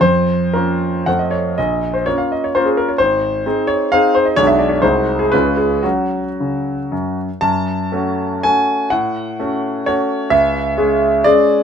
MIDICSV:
0, 0, Header, 1, 2, 480
1, 0, Start_track
1, 0, Key_signature, -5, "minor"
1, 0, Tempo, 523560
1, 20, Time_signature, 3, 2, 24, 8
1, 981, Tempo, 493421
1, 2421, Tempo, 453858
1, 4321, Key_signature, 3, "minor"
1, 4821, Tempo, 509338
1, 5781, Tempo, 542495
1, 6741, Tempo, 507614
1, 8181, Tempo, 476190
1, 9621, Tempo, 457317
1, 11463, End_track
2, 0, Start_track
2, 0, Title_t, "Grand piano"
2, 0, Program_c, 0, 0
2, 7, Note_on_c, 0, 72, 83
2, 8, Note_on_c, 0, 41, 50
2, 221, Control_c, 0, 64, 127
2, 477, Note_off_c, 0, 41, 0
2, 490, Note_on_c, 0, 70, 59
2, 491, Note_off_c, 0, 72, 0
2, 496, Note_on_c, 0, 58, 31
2, 500, Note_on_c, 0, 61, 35
2, 508, Note_on_c, 0, 65, 40
2, 943, Note_off_c, 0, 58, 0
2, 945, Note_off_c, 0, 61, 0
2, 949, Note_off_c, 0, 65, 0
2, 975, Note_on_c, 0, 78, 78
2, 977, Note_off_c, 0, 70, 0
2, 982, Note_on_c, 0, 41, 50
2, 987, Note_on_c, 0, 57, 35
2, 993, Note_on_c, 0, 60, 35
2, 995, Control_c, 0, 64, 0
2, 998, Note_on_c, 0, 65, 35
2, 1097, Note_on_c, 0, 75, 46
2, 1102, Note_off_c, 0, 78, 0
2, 1192, Control_c, 0, 64, 127
2, 1212, Note_on_c, 0, 73, 59
2, 1226, Note_off_c, 0, 75, 0
2, 1434, Note_off_c, 0, 57, 0
2, 1438, Note_off_c, 0, 60, 0
2, 1440, Note_off_c, 0, 65, 0
2, 1456, Note_off_c, 0, 41, 0
2, 1461, Note_off_c, 0, 73, 0
2, 1474, Note_on_c, 0, 75, 63
2, 1481, Control_c, 0, 64, 0
2, 1484, Note_on_c, 0, 34, 53
2, 1687, Control_c, 0, 64, 127
2, 1824, Note_on_c, 0, 72, 52
2, 1826, Note_off_c, 0, 75, 0
2, 1940, Note_off_c, 0, 34, 0
2, 1943, Note_on_c, 0, 73, 75
2, 1946, Note_off_c, 0, 72, 0
2, 1953, Note_on_c, 0, 58, 39
2, 1956, Note_on_c, 0, 61, 38
2, 1958, Note_on_c, 0, 65, 37
2, 1959, Control_c, 0, 64, 0
2, 2059, Note_on_c, 0, 77, 55
2, 2068, Note_off_c, 0, 73, 0
2, 2184, Note_off_c, 0, 77, 0
2, 2196, Note_on_c, 0, 75, 56
2, 2310, Note_off_c, 0, 75, 0
2, 2314, Note_on_c, 0, 73, 56
2, 2385, Note_off_c, 0, 58, 0
2, 2386, Note_off_c, 0, 61, 0
2, 2388, Note_off_c, 0, 65, 0
2, 2419, Note_on_c, 0, 72, 77
2, 2423, Note_on_c, 0, 58, 48
2, 2423, Note_on_c, 0, 61, 44
2, 2425, Note_off_c, 0, 73, 0
2, 2434, Note_on_c, 0, 65, 52
2, 2531, Note_on_c, 0, 68, 51
2, 2542, Note_off_c, 0, 72, 0
2, 2656, Note_off_c, 0, 68, 0
2, 2657, Note_on_c, 0, 70, 64
2, 2776, Note_on_c, 0, 73, 52
2, 2777, Note_off_c, 0, 70, 0
2, 2852, Note_off_c, 0, 58, 0
2, 2852, Note_off_c, 0, 61, 0
2, 2858, Note_off_c, 0, 65, 0
2, 2879, Note_on_c, 0, 72, 86
2, 2892, Note_off_c, 0, 73, 0
2, 2892, Note_on_c, 0, 32, 52
2, 3065, Control_c, 0, 64, 127
2, 3358, Note_off_c, 0, 32, 0
2, 3383, Control_c, 0, 64, 0
2, 3384, Note_on_c, 0, 60, 42
2, 3390, Note_on_c, 0, 63, 42
2, 3390, Note_on_c, 0, 68, 46
2, 3609, Note_on_c, 0, 73, 80
2, 3614, Note_off_c, 0, 72, 0
2, 3823, Note_off_c, 0, 60, 0
2, 3826, Note_off_c, 0, 63, 0
2, 3826, Note_off_c, 0, 68, 0
2, 3854, Note_off_c, 0, 73, 0
2, 3867, Note_on_c, 0, 77, 92
2, 3872, Note_on_c, 0, 60, 57
2, 3872, Note_on_c, 0, 63, 48
2, 3885, Note_on_c, 0, 68, 55
2, 4095, Note_off_c, 0, 77, 0
2, 4109, Note_on_c, 0, 72, 75
2, 4215, Note_off_c, 0, 72, 0
2, 4223, Note_on_c, 0, 75, 58
2, 4285, Note_off_c, 0, 60, 0
2, 4285, Note_off_c, 0, 63, 0
2, 4291, Note_off_c, 0, 68, 0
2, 4329, Note_off_c, 0, 75, 0
2, 4339, Note_on_c, 0, 73, 105
2, 4343, Note_on_c, 0, 56, 45
2, 4344, Note_on_c, 0, 35, 61
2, 4353, Note_on_c, 0, 62, 47
2, 4362, Note_on_c, 0, 66, 46
2, 4447, Note_off_c, 0, 73, 0
2, 4451, Note_on_c, 0, 76, 66
2, 4495, Control_c, 0, 64, 127
2, 4566, Note_off_c, 0, 76, 0
2, 4576, Note_on_c, 0, 74, 58
2, 4687, Note_on_c, 0, 73, 54
2, 4695, Note_off_c, 0, 74, 0
2, 4789, Note_off_c, 0, 56, 0
2, 4794, Note_off_c, 0, 62, 0
2, 4798, Note_off_c, 0, 66, 0
2, 4817, Note_off_c, 0, 35, 0
2, 4818, Note_on_c, 0, 72, 76
2, 4820, Note_off_c, 0, 73, 0
2, 4825, Note_on_c, 0, 56, 41
2, 4826, Note_on_c, 0, 36, 52
2, 4831, Control_c, 0, 64, 0
2, 4831, Note_on_c, 0, 63, 41
2, 4840, Note_on_c, 0, 66, 42
2, 5001, Control_c, 0, 64, 127
2, 5171, Note_on_c, 0, 68, 60
2, 5178, Note_off_c, 0, 72, 0
2, 5260, Note_off_c, 0, 56, 0
2, 5263, Note_off_c, 0, 63, 0
2, 5268, Note_off_c, 0, 66, 0
2, 5284, Note_off_c, 0, 36, 0
2, 5289, Note_on_c, 0, 71, 83
2, 5292, Note_off_c, 0, 68, 0
2, 5301, Note_on_c, 0, 56, 41
2, 5305, Note_on_c, 0, 37, 57
2, 5306, Note_on_c, 0, 61, 42
2, 5308, Note_on_c, 0, 65, 41
2, 5311, Control_c, 0, 64, 0
2, 5480, Control_c, 0, 64, 127
2, 5530, Note_off_c, 0, 71, 0
2, 5530, Note_on_c, 0, 68, 60
2, 5746, Note_off_c, 0, 56, 0
2, 5748, Note_off_c, 0, 61, 0
2, 5749, Note_off_c, 0, 65, 0
2, 5771, Note_off_c, 0, 37, 0
2, 5771, Note_on_c, 0, 66, 70
2, 5779, Note_off_c, 0, 68, 0
2, 5783, Note_on_c, 0, 61, 37
2, 5784, Note_on_c, 0, 54, 46
2, 5792, Control_c, 0, 64, 0
2, 5957, Control_c, 0, 64, 127
2, 6124, Note_off_c, 0, 54, 0
2, 6172, Note_off_c, 0, 61, 0
2, 6280, Note_on_c, 0, 49, 37
2, 6607, Note_off_c, 0, 49, 0
2, 6737, Note_on_c, 0, 42, 45
2, 6748, Control_c, 0, 64, 0
2, 6978, Note_off_c, 0, 66, 0
2, 7073, Note_off_c, 0, 42, 0
2, 7201, Note_on_c, 0, 81, 90
2, 7210, Note_on_c, 0, 42, 58
2, 7421, Control_c, 0, 64, 127
2, 7685, Note_off_c, 0, 42, 0
2, 7685, Note_on_c, 0, 57, 46
2, 7694, Note_on_c, 0, 61, 48
2, 7699, Note_on_c, 0, 66, 45
2, 8134, Note_off_c, 0, 57, 0
2, 8138, Note_off_c, 0, 61, 0
2, 8141, Note_off_c, 0, 66, 0
2, 8170, Note_on_c, 0, 80, 90
2, 8172, Note_off_c, 0, 81, 0
2, 8179, Note_on_c, 0, 57, 42
2, 8181, Note_on_c, 0, 61, 40
2, 8182, Note_on_c, 0, 66, 46
2, 8192, Control_c, 0, 64, 0
2, 8613, Note_off_c, 0, 57, 0
2, 8615, Note_off_c, 0, 61, 0
2, 8615, Note_off_c, 0, 66, 0
2, 8642, Note_on_c, 0, 78, 84
2, 8649, Note_off_c, 0, 80, 0
2, 8658, Note_on_c, 0, 45, 58
2, 8866, Control_c, 0, 64, 127
2, 9131, Note_off_c, 0, 45, 0
2, 9139, Note_on_c, 0, 57, 45
2, 9144, Note_on_c, 0, 61, 43
2, 9148, Note_on_c, 0, 66, 49
2, 9578, Note_off_c, 0, 57, 0
2, 9581, Note_off_c, 0, 61, 0
2, 9583, Note_off_c, 0, 66, 0
2, 9609, Note_on_c, 0, 73, 85
2, 9614, Note_off_c, 0, 78, 0
2, 9614, Note_on_c, 0, 57, 44
2, 9621, Note_on_c, 0, 61, 46
2, 9621, Note_on_c, 0, 66, 52
2, 9630, Control_c, 0, 64, 0
2, 10041, Note_off_c, 0, 57, 0
2, 10044, Note_off_c, 0, 61, 0
2, 10044, Note_off_c, 0, 66, 0
2, 10071, Note_on_c, 0, 76, 86
2, 10072, Note_on_c, 0, 37, 60
2, 10080, Note_off_c, 0, 73, 0
2, 10305, Control_c, 0, 64, 127
2, 10548, Note_off_c, 0, 37, 0
2, 10569, Note_on_c, 0, 56, 51
2, 10571, Note_on_c, 0, 61, 48
2, 10574, Note_on_c, 0, 68, 52
2, 11021, Note_off_c, 0, 56, 0
2, 11022, Note_off_c, 0, 61, 0
2, 11023, Note_off_c, 0, 68, 0
2, 11056, Note_off_c, 0, 76, 0
2, 11058, Note_on_c, 0, 74, 95
2, 11070, Note_on_c, 0, 56, 46
2, 11077, Note_on_c, 0, 61, 45
2, 11077, Note_on_c, 0, 68, 52
2, 11078, Control_c, 0, 64, 0
2, 11463, Note_off_c, 0, 56, 0
2, 11463, Note_off_c, 0, 61, 0
2, 11463, Note_off_c, 0, 68, 0
2, 11463, Note_off_c, 0, 74, 0
2, 11463, End_track
0, 0, End_of_file